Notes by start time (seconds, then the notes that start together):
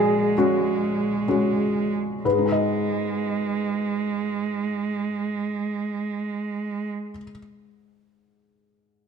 Already playing: A#1 G#3 C#4 F#4 G#4 A#4
0.38 G#3 C#4 F#4
1.28 G#3 C#4 F#4
2.23 G#2 G#3 B4
2.32 G#3
2.39 D#4
2.46 G#4
2.52 D#5